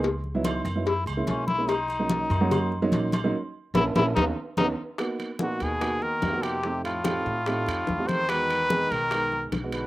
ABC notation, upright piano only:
X:1
M:4/4
L:1/16
Q:1/4=146
K:G#m
V:1 name="Upright piano"
z3 [F,B,DE]3 z [F,B,DE] z3 [G,A,CE]3 z [G,A,CE] | z3 [F,A,CD]3 z [F,A,CF]3 z [F,A,CD]3 z [F,A,CD] | z4 [A,CE]2 [A,CE]2 [B,CD]2 z2 [B,CD]2 z2 | [A,B,DF]3 z [A,B,DF]3 z [A,B,DF]4 z [A,B,DF]2 z |
[=A,=C_E=G]3 z [A,CEG]3 z [A,CEG]4 z [A,CEG]2 z | [G,B,DF]3 z [G,B,DG]3 z [G,B,DG]4 z [G,B,DF]2 z |]